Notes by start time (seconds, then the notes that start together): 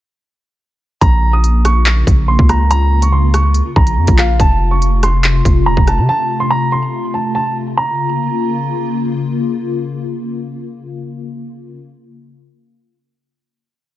1.01 A#1 C#3 A#3 F4 A#5, kick, closed hi-hat
1.33 D#6
1.44 closed hi-hat
1.65 C#6, cross-stick, closed hi-hat
1.85 clap, closed hi-hat
2.07 A#1, kick, closed hi-hat
2.28 C6
2.39 C#2, kick
2.49 A#5, cross-stick, closed hi-hat
2.71 A#5, closed hi-hat
3.02 C#6, closed hi-hat
3.12 C6
3.34 C#6, cross-stick, closed hi-hat
3.54 closed hi-hat
3.76 A#1 A#5, kick
3.87 closed hi-hat
3.97 F2
4.07 A#1, kick, closed hi-hat
4.18 F5, cross-stick, clap, closed hi-hat
4.40 F1 C3 A3 A5, kick, closed hi-hat
4.71 C#6
4.82 closed hi-hat
5.03 C6, cross-stick, closed hi-hat
5.24 clap, closed hi-hat
5.45 F1, kick, closed hi-hat
5.66 D#1 A#5
5.77 F1, kick
5.87 A5, cross-stick, closed hi-hat
5.98 C3
6.09 A5
6.40 C6
6.50 A#5
6.72 C6
7.14 A5
7.35 A5
7.77 C#3 A#3 F4 A#5